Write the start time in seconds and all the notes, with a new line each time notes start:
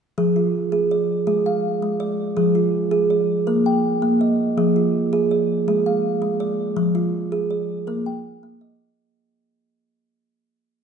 0.18 F3 G#4
0.36 F4
0.72 G#4
0.91 D5
1.27 G#3 G#4
1.46 F5
1.82 G#3
2.00 D5
2.37 F3 G#4
2.55 F4
2.91 G#4
3.10 D5
3.47 A#3 A#4
3.66 G5
4.02 A#3
4.21 D#5
4.58 F3 G#4
4.76 F4
5.13 G#4
5.31 D5
5.68 G#3 G#4
5.86 F5
6.22 G#3
6.40 D5
6.77 F3
6.95 F4
7.32 G#4
7.51 D5
7.87 A#3 A#4
8.06 G5
8.43 A#3
8.61 D#5